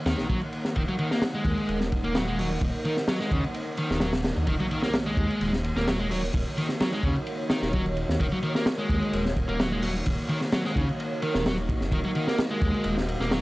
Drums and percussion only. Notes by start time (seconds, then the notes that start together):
0.06 snare, ride
0.18 snare
0.30 kick, ride
0.41 ride
0.53 ride
0.65 snare
0.76 kick, ride
0.88 ride
0.98 ride
1.11 snare
1.22 snare, ride
1.45 kick, ride
1.58 ride
1.69 ride
1.81 snare
1.92 kick, ride
2.04 ride
2.15 snare, ride
2.39 open hi-hat
2.61 kick, ride
2.85 ride
2.97 snare
3.08 snare, ride
3.21 snare
3.31 kick, ride
3.44 ride
3.54 ride
3.77 ride
3.91 snare
4.00 snare, ride
4.13 snare, ride
4.24 snare, ride
4.36 ride
4.47 kick, ride
4.60 ride
4.71 ride
4.82 snare
4.93 snare, ride
5.17 kick, ride
5.30 ride
5.41 ride
5.53 snare
5.64 ride
5.77 snare
5.88 snare, ride
6.11 open hi-hat
6.34 kick, ride
6.58 ride
6.69 snare
6.80 snare, ride
6.91 snare
7.03 kick, ride
7.16 ride
7.27 ride
7.50 snare, ride
7.62 snare
7.73 kick, ride
7.86 ride
7.97 ride
8.09 snare
8.20 kick, ride
8.31 ride
8.43 ride
8.55 snare
8.66 snare, ride
8.89 kick, ride
9.02 ride
9.13 ride
9.26 snare
9.37 kick, ride
9.49 ride
9.60 snare, ride
9.82 open hi-hat
10.06 kick, ride
10.29 ride
10.41 snare
10.52 snare, ride
10.65 snare
10.76 kick, ride
10.89 ride
11.00 ride
11.22 ride
11.35 snare
11.46 snare, ride
11.58 ride
11.69 kick, ride
11.81 snare
11.92 kick, ride
12.04 ride
12.15 ride
12.28 snare
12.38 snare, ride
12.62 kick, ride
12.74 ride
12.84 ride
12.98 snare
13.08 ride
13.21 snare
13.31 snare, ride